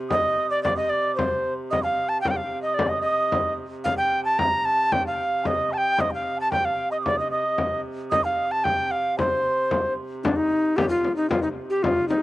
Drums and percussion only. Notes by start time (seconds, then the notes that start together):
0.10 frame drum
0.65 frame drum
0.92 frame drum
1.19 frame drum
1.73 frame drum
2.25 frame drum
2.79 frame drum
3.32 frame drum
3.85 frame drum
4.39 frame drum
4.92 frame drum
5.19 frame drum
5.45 frame drum
5.72 frame drum
5.98 frame drum
6.52 frame drum
7.06 frame drum
7.58 frame drum
8.12 frame drum
8.65 frame drum
9.19 frame drum
9.46 frame drum
9.71 frame drum
10.25 frame drum
10.78 frame drum
11.04 frame drum
11.31 frame drum
11.84 frame drum
12.11 frame drum